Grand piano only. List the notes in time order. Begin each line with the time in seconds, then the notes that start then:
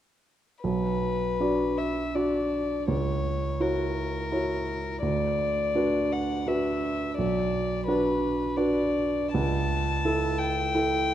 0.64 B1
1.40 D4 F#4 D5
2.15 D4 F#4 D5
2.88 C#2
3.60 E4 F#4 C#5
4.32 E4 F#4 C#5
5.02 D2
5.75 D4 F#4 B4
6.47 D4 F#4 B4
7.19 B1
7.88 D4 F#4 B4
8.57 D4 F#4 B4
9.34 C#2
10.05 E4 A4
10.75 E4 A4